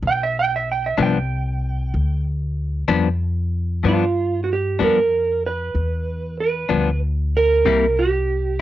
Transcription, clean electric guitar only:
0.98 G2 F3 B3 D4
2.88 G2 F3 B3 D4
3.83 G2 F3 B3 D4
4.79 G2 F3 B3 D4
6.69 G2 F3 B3 D4
7.66 C3 G3 A#3 E4

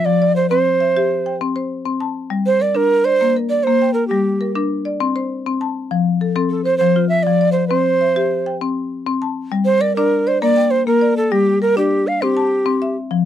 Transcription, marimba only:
Already playing: F4
0.06 F3
0.22 D5
0.51 C4
0.80 E5
0.97 G4 E5
1.26 G5
1.41 C4
1.56 C5
1.85 C4
2.00 A5
2.30 G3
2.60 A#4
2.75 D4 A#4
3.05 D5
3.21 A#3
3.36 A#4
3.67 A#3
3.82 G5
4.11 G3
4.41 A#4
4.55 D4 A#4
4.85 D5
5.00 C4
5.16 C5
5.46 C4
5.61 A5
5.91 F3
6.21 A4
6.36 C4 A4
6.66 C5
6.81 F3
6.96 F4
7.27 F3
7.41 D5
7.71 C4
8.01 E5
8.16 G4 E5
8.46 G5
8.61 C4
9.07 C4
9.22 A5
9.52 G3
9.81 A#4
9.97 D4 D5
10.27 D5
10.42 A#3 A#4
10.57 G5
10.87 A#3
11.01 D5
11.32 G3
11.62 A#4
11.77 D4 D5
12.22 C4 C5
12.37 A5
12.66 C4
12.82 E5
13.11 F3

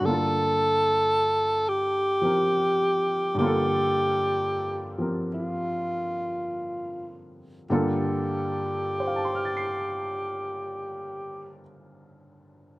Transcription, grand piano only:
0.00 G2 D3
0.06 A#3 F4
0.11 A4
2.21 F3 C4 G4 A#4
3.35 G2 D3
3.40 A#3 F4
3.46 A4
4.98 F3 C4 G4 A#4
7.70 G2 D3 A#3 F4 A4
9.00 C5
9.07 F5
9.16 A5
9.25 C6
9.35 F6
9.45 A6
9.57 C7

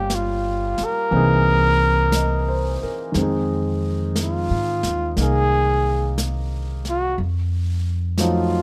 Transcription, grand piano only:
Already playing: G3 A#3 C#4 F4 G4
1.11 E3 A#3 C4
1.15 D#4 G#4
2.15 D#5
2.48 C5
2.83 A#4
3.12 D#3 G#3
3.17 C4 D#4
3.23 G#4
5.18 A#3 D#4 A#4 F5
8.18 F3 F#3 A3 D#4 C5

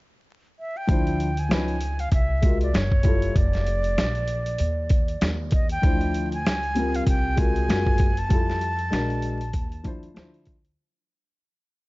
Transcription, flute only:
0.59 E5
0.77 G5
1.39 G#5
2.00 F5
2.13 E5
2.63 D5
2.76 C#5
3.37 D5
5.53 D#5
5.71 G5
6.34 G#5
6.96 F5
7.09 G5
7.39 G#5
8.18 A5

